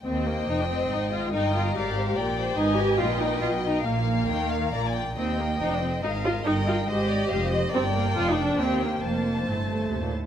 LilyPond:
<<
  \new Staff \with { instrumentName = "Violin section" } { \time 3/4 \key ees \major \tempo 4 = 140 g''2. | g''4 f''4 g''4 | aes''4 g''2 | f''4 g''8 f''8 bes''16 aes''16 g''8 |
g''2 ees''4 | g''4 ees''2 | \key f \mixolydian g''2 g''4 | a''2~ a''8 r8 | }
  \new Staff \with { instrumentName = "Violin section" } { \time 3/4 \key ees \major << { ees''2. | ees''4 d''8 c''8 d''4 | ees''4 ees''2 | f''2 d''8 r8 |
ees''2 f''4 | ees''4 ees''4 f''8 ees''8 | \key f \mixolydian d''2 c''4 | c''2~ c''8 r8 | } \\ { c''2. | bes'2 bes'8 c''8 | ces''2. | bes'2 bes'8 r8 |
ees''4 c''4 bes'4 | bes'4 c''8 d''8 c''4 | bes'4 a'4 g'4 | c''2~ c''8 r8 | } >> }
  \new Staff \with { instrumentName = "Viola section" } { \time 3/4 \key ees \major c'8 bes8 ees'16 d'16 c'8 ees'8 f'8 | ees'8 f'8 g'4. r8 | ees'8 g'8 f'8 ees'8 f'8 ees'8 | bes2~ bes8 r8 |
c'8 bes8 ees'16 d'16 c'8 ees'8 f'8 | ees'8 f'8 g'4. r8 | \key f \mixolydian c'8 bes8 f'16 ees'16 d'8 c'8 bes8 | bes4 a4. r8 | }
  \new Staff \with { instrumentName = "Cello section" } { \clef bass \time 3/4 \key ees \major ees,4 f,4 aes,4 | g,4 aes,4 bes,4 | aes,4 bes,4 ces4 | bes,4 ees4 bes,4 |
ees,4 f,4 aes,4 | g,4 aes,4 f,4 | \key f \mixolydian g,4 f,4 ees,4 | f,4 a,8 g,8 c16 bes,16 a,8 | }
  \new Staff \with { instrumentName = "Double bass section" } { \clef bass \time 3/4 \key ees \major ees,4 f,,4 aes,,4 | g,,4 aes,,4 bes,,4 | aes,,4 bes,,4 ces,4 | bes,,4 ees,4 bes,,4 |
ees,4 f,,4 aes,,4 | g,,4 aes,,4 f,,4 | \key f \mixolydian g,,4 f,,4 ees,4 | f,,4 g,,4 ees,4 | }
>>